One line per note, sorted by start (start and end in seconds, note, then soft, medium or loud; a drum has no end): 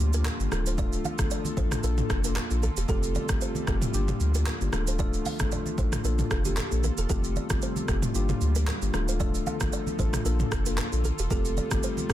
0.00 0.28 D2 medium
0.00 2.85 D3 medium
0.00 0.50 G3 medium
0.00 0.10 A#3 loud
0.00 0.51 A#3 medium
0.00 0.10 D4 medium
0.00 0.10 F4 medium
0.00 1.81 F4 medium
0.00 0.10 G4 loud
0.13 0.49 A#3 medium
0.13 0.49 D4 medium
0.13 0.49 F4 medium
0.13 0.49 G4 medium
0.13 0.22 A#4 medium
0.13 shaker loud
0.25 0.34 A#4 medium
0.25 cross-stick medium
0.25 clap medium
0.25 low conga medium
0.25 shaker medium
0.40 0.48 G1 loud
0.40 shaker medium
0.51 1.00 D1 loud
0.51 1.82 F3 medium
0.51 0.76 A3 medium
0.51 0.76 D4 medium
0.51 0.76 F4 medium
0.51 3.90 A4 medium
0.51 0.76 A4 medium
0.51 0.61 A4 medium
0.51 cross-stick medium
0.51 high conga medium
0.51 shaker medium
0.66 0.75 C5 medium
0.66 shaker medium
0.78 1.15 A3 medium
0.78 1.15 D4 medium
0.78 1.15 F4 medium
0.78 1.16 A4 loud
0.78 0.87 D5 loud
0.78 kick loud
0.78 low conga medium
0.78 shaker medium
0.93 shaker medium
1.05 1.13 F5 medium
1.05 high conga medium
1.05 shaker soft
1.19 1.27 G1 medium
1.19 1.54 A3 medium
1.19 1.54 D4 medium
1.19 1.54 F4 medium
1.19 1.54 A4 medium
1.19 kick loud
1.19 cross-stick loud
1.19 high conga medium
1.19 shaker loud
1.31 1.40 D5 medium
1.31 shaker medium
1.45 high conga medium
1.45 shaker soft
1.57 1.76 A1 loud
1.57 1.81 A3 medium
1.57 1.81 D4 medium
1.57 1.82 F4 medium
1.57 1.82 A4 medium
1.57 1.66 C5 medium
1.57 kick medium
1.57 low conga medium
1.57 shaker medium
1.71 cross-stick medium
1.71 mid tom loud
1.71 shaker loud
1.83 2.02 A#1 loud
1.83 2.87 A#3 medium
1.83 2.21 A#3 loud
1.83 2.21 D4 medium
1.83 4.70 F4 medium
1.83 2.21 F4 medium
1.83 2.21 A4 loud
1.83 1.92 A#4 medium
1.83 shaker medium
1.98 mid tom medium
1.98 shaker soft
2.10 2.39 F1 medium
2.10 2.18 A4 medium
2.10 kick medium
2.10 cross-stick loud
2.10 shaker soft
2.24 2.43 A#3 medium
2.24 2.43 D4 medium
2.24 2.43 F4 medium
2.24 2.43 A4 medium
2.24 2.33 A#4 medium
2.24 shaker loud
2.36 2.45 A#4 medium
2.36 cross-stick medium
2.36 clap medium
2.36 low conga medium
2.36 shaker medium
2.50 2.69 A#1 medium
2.50 2.69 A#3 medium
2.50 2.70 D4 medium
2.50 2.70 F4 medium
2.50 2.70 A4 medium
2.50 shaker medium
2.62 2.71 A4 medium
2.62 high conga medium
2.62 shaker medium
2.77 2.85 E1 medium
2.77 2.86 G4 medium
2.77 shaker medium
2.88 3.18 F1 loud
2.88 3.93 C3 medium
2.88 4.71 G3 medium
2.88 3.26 A3 medium
2.88 3.26 C4 medium
2.88 3.26 F4 medium
2.88 3.26 G4 loud
2.88 3.00 A4 loud
2.88 kick loud
2.88 low conga medium
2.88 shaker medium
3.03 shaker medium
3.15 3.24 D5 medium
3.15 high conga medium
3.15 shaker soft
3.29 3.38 G1 medium
3.29 3.65 A3 medium
3.29 3.65 C4 medium
3.29 3.65 F4 medium
3.29 3.65 G4 medium
3.29 kick loud
3.29 cross-stick loud
3.29 high conga medium
3.29 shaker loud
3.41 3.50 C5 medium
3.41 shaker medium
3.55 high conga medium
3.55 shaker soft
3.67 3.86 F1 loud
3.67 3.92 A3 medium
3.67 3.92 C4 medium
3.67 3.92 F4 medium
3.67 3.92 G4 medium
3.67 3.77 A4 medium
3.67 kick medium
3.67 cross-stick medium
3.67 low conga medium
3.67 shaker medium
3.82 mid tom loud
3.82 shaker loud
3.94 4.13 G1 loud
3.94 4.72 D3 medium
3.94 4.31 A#3 loud
3.94 4.72 A#3 medium
3.94 4.31 D4 medium
3.94 4.31 F4 medium
3.94 4.31 G4 loud
3.94 shaker medium
4.08 4.17 G4 medium
4.08 mid tom medium
4.08 shaker soft
4.20 4.49 D2 loud
4.20 shaker soft
4.34 4.54 A#3 medium
4.34 4.54 D4 medium
4.34 4.54 F4 medium
4.34 4.54 G4 medium
4.34 4.43 A#4 medium
4.34 shaker loud
4.46 4.55 A#4 medium
4.46 cross-stick medium
4.46 clap loud
4.46 low conga medium
4.46 shaker medium
4.61 4.70 G1 loud
4.61 4.80 A#3 medium
4.61 4.71 D4 medium
4.61 4.72 F4 medium
4.61 4.80 G4 medium
4.61 shaker medium
4.72 5.21 D1 loud
4.72 7.08 D3 medium
4.72 6.03 F3 medium
4.72 4.97 A3 medium
4.72 6.03 A3 medium
4.72 4.97 D4 medium
4.72 4.97 F4 medium
4.72 10.22 F4 medium
4.72 4.97 A4 loud
4.72 4.82 A4 medium
4.72 cross-stick loud
4.72 high conga medium
4.72 shaker medium
4.87 4.96 C5 medium
4.87 shaker medium
4.99 5.36 A3 loud
4.99 5.36 D4 medium
4.99 5.37 F4 medium
4.99 5.37 A4 loud
4.99 5.08 D5 loud
4.99 kick loud
4.99 low conga medium
4.99 shaker medium
5.14 shaker medium
5.25 5.34 F5 medium
5.25 open hi-hat soft
5.25 high conga medium
5.25 shaker soft
5.40 5.48 G1 medium
5.40 5.75 A3 medium
5.40 5.75 D4 medium
5.40 5.75 F4 medium
5.40 5.75 A4 medium
5.40 kick loud
5.40 cross-stick loud
5.40 high conga medium
5.40 shaker loud
5.52 5.61 D5 medium
5.52 low conga medium
5.52 shaker medium
5.66 high conga medium
5.66 shaker soft
5.78 5.97 A1 loud
5.78 6.02 A3 medium
5.78 6.03 D4 medium
5.78 6.03 F4 medium
5.78 6.03 A4 medium
5.78 5.87 C5 medium
5.78 kick medium
5.78 low conga medium
5.78 shaker medium
5.92 cross-stick medium
5.92 mid tom loud
5.92 shaker loud
6.04 6.23 A#1 loud
6.04 6.42 A#3 loud
6.04 7.09 A#3 medium
6.04 6.42 D4 medium
6.04 6.42 F4 medium
6.04 6.42 A4 loud
6.04 8.13 A4 medium
6.04 6.13 A#4 medium
6.04 shaker medium
6.19 mid tom medium
6.19 shaker soft
6.31 6.60 F1 loud
6.31 6.40 A4 medium
6.31 kick loud
6.31 cross-stick loud
6.31 shaker soft
6.45 6.64 A#3 medium
6.45 6.64 D4 medium
6.45 6.64 F4 medium
6.45 6.55 G4 medium
6.45 6.65 A4 medium
6.45 high conga medium
6.45 shaker loud
6.57 6.66 A4 medium
6.57 cross-stick medium
6.57 clap loud
6.57 low conga medium
6.57 shaker medium
6.71 6.90 A#1 medium
6.71 6.90 A#3 medium
6.71 6.91 D4 medium
6.71 6.91 F4 medium
6.71 6.91 A4 medium
6.71 shaker medium
6.83 6.92 A#4 medium
6.83 high conga medium
6.83 shaker medium
6.98 7.06 E1 medium
6.98 7.07 A4 medium
6.98 shaker medium
7.09 7.39 F1 loud
7.09 8.14 C3 medium
7.09 8.14 G3 medium
7.09 7.47 A3 medium
7.09 7.47 C4 medium
7.09 7.47 F4 medium
7.09 7.47 G4 loud
7.09 7.18 A4 loud
7.09 kick loud
7.09 low conga medium
7.09 shaker medium
7.24 shaker medium
7.36 7.45 D5 medium
7.36 high conga medium
7.36 shaker soft
7.50 7.59 G1 medium
7.50 7.86 A3 medium
7.50 7.86 C4 medium
7.50 7.86 F4 medium
7.50 7.86 G4 medium
7.50 kick loud
7.50 cross-stick loud
7.50 high conga medium
7.50 shaker loud
7.62 7.71 C5 medium
7.62 shaker medium
7.76 high conga medium
7.76 shaker soft
7.88 8.07 F1 loud
7.88 8.13 A3 medium
7.88 8.13 C4 medium
7.88 8.13 F4 medium
7.88 8.13 G4 medium
7.88 7.97 A4 medium
7.88 kick medium
7.88 cross-stick medium
7.88 low conga medium
7.88 shaker medium
8.02 mid tom loud
8.02 shaker loud
8.15 8.34 G1 loud
8.15 11.28 D3 medium
8.15 8.93 G3 medium
8.15 8.52 A#3 loud
8.15 8.93 A#3 medium
8.15 8.52 D4 medium
8.15 8.52 F4 medium
8.15 8.53 G4 loud
8.15 shaker medium
8.29 8.38 G4 medium
8.29 mid tom medium
8.29 shaker soft
8.41 8.70 D2 loud
8.41 shaker soft
8.55 8.75 A#3 medium
8.55 8.75 D4 medium
8.55 8.75 F4 medium
8.55 8.75 G4 medium
8.55 8.64 A#4 medium
8.55 shaker loud
8.67 8.76 A#4 medium
8.67 cross-stick medium
8.67 clap medium
8.67 low conga medium
8.67 shaker medium
8.82 8.90 G1 medium
8.82 9.01 A#3 medium
8.82 8.92 D4 medium
8.82 8.93 F4 medium
8.82 9.01 G4 medium
8.82 shaker medium
8.93 9.42 D1 loud
8.93 10.24 F3 medium
8.93 9.18 A3 medium
8.93 9.18 D4 medium
8.93 9.18 F4 medium
8.93 9.18 A4 loud
8.93 12.13 A4 medium
8.93 9.02 A4 medium
8.93 cross-stick medium
8.93 high conga medium
8.93 shaker medium
9.08 9.17 C5 medium
9.08 shaker medium
9.20 9.57 A3 loud
9.20 9.57 D4 medium
9.20 9.58 F4 medium
9.20 9.58 A4 loud
9.20 9.29 D5 loud
9.20 kick loud
9.20 low conga medium
9.20 shaker medium
9.35 shaker medium
9.47 9.55 F5 medium
9.47 high conga medium
9.47 shaker soft
9.60 9.69 G1 medium
9.60 9.96 A3 medium
9.60 9.96 D4 medium
9.60 9.96 F4 medium
9.60 9.97 A4 medium
9.60 kick loud
9.60 cross-stick loud
9.60 high conga medium
9.60 shaker loud
9.73 9.81 D5 medium
9.73 shaker medium
9.87 high conga medium
9.87 shaker soft
9.99 10.18 A1 loud
9.99 10.23 A3 medium
9.99 10.23 D4 medium
9.99 10.24 F4 medium
9.99 10.24 A4 medium
9.99 10.08 C5 medium
9.99 kick medium
9.99 low conga medium
9.99 shaker medium
10.13 cross-stick medium
10.13 mid tom loud
10.13 shaker loud
10.25 10.44 A#1 loud
10.25 10.62 A#3 loud
10.25 11.30 A#3 medium
10.25 10.63 D4 medium
10.25 10.63 F4 medium
10.25 12.13 F4 medium
10.25 10.63 A4 loud
10.25 10.34 A#4 medium
10.25 shaker medium
10.40 mid tom medium
10.40 shaker soft
10.52 10.81 F1 loud
10.52 10.60 A4 medium
10.52 kick medium
10.52 cross-stick loud
10.52 shaker soft
10.66 10.85 A#3 medium
10.66 10.85 D4 medium
10.66 10.85 F4 medium
10.66 10.85 A4 medium
10.66 10.75 A#4 medium
10.66 shaker loud
10.78 10.87 A#4 medium
10.78 cross-stick medium
10.78 clap medium
10.78 low conga medium
10.78 shaker medium
10.92 11.11 A#1 medium
10.92 11.11 A#3 medium
10.92 11.11 D4 medium
10.92 11.12 F4 medium
10.92 11.12 A4 medium
10.92 shaker medium
11.04 11.13 A4 medium
11.04 high conga medium
11.04 shaker medium
11.19 11.27 E1 medium
11.19 11.28 G4 medium
11.19 shaker medium
11.30 11.60 F1 loud
11.30 12.13 C3 medium
11.30 12.13 G3 medium
11.30 11.68 A3 loud
11.30 11.68 C4 medium
11.30 11.68 F4 medium
11.30 11.68 G4 loud
11.30 11.42 A4 loud
11.30 kick loud
11.30 low conga medium
11.30 shaker medium
11.45 shaker medium
11.57 11.66 D5 medium
11.57 high conga medium
11.57 shaker soft
11.71 11.80 G1 medium
11.71 12.07 A3 medium
11.71 12.07 C4 medium
11.71 12.07 F4 medium
11.71 12.07 G4 medium
11.71 kick loud
11.71 cross-stick loud
11.71 high conga medium
11.71 shaker loud
11.83 11.92 C5 medium
11.83 shaker medium
11.97 high conga medium
11.97 shaker soft
12.09 12.13 F1 loud
12.09 12.13 A3 medium
12.09 12.13 C4 medium
12.09 12.13 F4 medium
12.09 12.13 G4 medium
12.09 kick medium
12.09 cross-stick medium
12.09 low conga medium
12.09 shaker medium